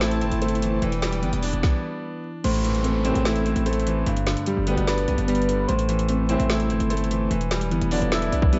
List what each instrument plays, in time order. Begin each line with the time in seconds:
Already playing: 808-style bass A1, grand piano A2 E3 A3 C4, synth keys C4 C5, string section E4 C5 A5
0.01 synth keys A3, grand piano E4, snare, closed hi-hat
0.11 closed hi-hat
0.21 808-style bass G1, grand piano C4, closed hi-hat
0.31 808-style bass G1, closed hi-hat
0.42 grand piano A3, synth keys C5, closed hi-hat
0.48 closed hi-hat
0.55 closed hi-hat
0.62 grand piano E3, closed hi-hat
0.82 808-style bass E1, grand piano E3, string section D5 G5, closed hi-hat
0.92 closed hi-hat
1.02 grand piano G3, snare, closed hi-hat
1.13 closed hi-hat
1.23 808-style bass G1, synth keys E3, grand piano B3, closed hi-hat
1.33 808-style bass E1, closed hi-hat
1.43 grand piano D4, open hi-hat
1.53 808-style bass E1, closed hi-hat
1.63 kick, snare
2.44 808-style bass A1, grand piano A2, synth keys C5, closed hi-hat, crash, downlifter
2.54 closed hi-hat
2.64 grand piano E3, closed hi-hat
2.75 closed hi-hat
2.84 grand piano A3, synth keys C4, closed hi-hat
3.05 brass ensemble C2 A2 E3, grand piano C4, closed hi-hat
3.15 808-style bass A1, closed hi-hat
3.25 synth keys A3, grand piano E4, snare, closed hi-hat
3.36 closed hi-hat
3.46 grand piano C4, closed hi-hat
3.56 808-style bass A1, closed hi-hat
3.66 grand piano A3, synth keys C5, closed hi-hat
3.73 closed hi-hat
3.79 closed hi-hat
3.86 grand piano E3, closed hi-hat
4.06 808-style bass G1, grand piano G2, closed hi-hat
4.17 closed hi-hat
4.27 grand piano D3, snare, closed hi-hat
4.37 closed hi-hat
4.46 grand piano G3, synth keys G3, closed hi-hat
4.57 808-style bass G1
4.67 brass ensemble D2 B2 G3, grand piano B3, closed hi-hat
4.77 808-style bass G1, closed hi-hat
4.88 grand piano D4, synth keys B4, snare, closed hi-hat
4.98 closed hi-hat
5.08 808-style bass B1, grand piano B3, closed hi-hat
5.18 808-style bass G1, closed hi-hat
5.28 grand piano G3, synth keys B3, closed hi-hat
5.35 closed hi-hat
5.42 closed hi-hat
5.48 grand piano D3, closed hi-hat
5.68 808-style bass A1, grand piano A2, synth keys C5, closed hi-hat
5.79 closed hi-hat
5.89 grand piano E3, closed hi-hat
5.99 closed hi-hat
6.09 grand piano A3, synth keys C4, closed hi-hat
6.29 brass ensemble C2 A2 E3, grand piano C4, closed hi-hat
6.40 808-style bass A1, closed hi-hat
6.50 synth keys A3, grand piano E4, snare, closed hi-hat
6.60 closed hi-hat
6.70 808-style bass G1, grand piano C4, closed hi-hat
6.80 808-style bass G1, closed hi-hat
6.90 grand piano A3, synth keys C5, closed hi-hat
6.97 closed hi-hat
7.04 closed hi-hat
7.11 grand piano E3, closed hi-hat
7.31 808-style bass E1, grand piano E3, closed hi-hat
7.41 closed hi-hat
7.51 grand piano G3, snare, closed hi-hat
7.61 closed hi-hat
7.71 808-style bass G1, synth keys E3, grand piano B3, closed hi-hat
7.82 808-style bass E1, closed hi-hat
7.91 brass ensemble B1 G2 D3, grand piano D4, open hi-hat
8.02 808-style bass E1, closed hi-hat
8.12 grand piano E4, synth keys E5, snare, closed hi-hat
8.22 closed hi-hat
8.32 808-style bass B1, grand piano D4, closed hi-hat
8.42 kick
8.52 synth keys G3, grand piano B3, closed hi-hat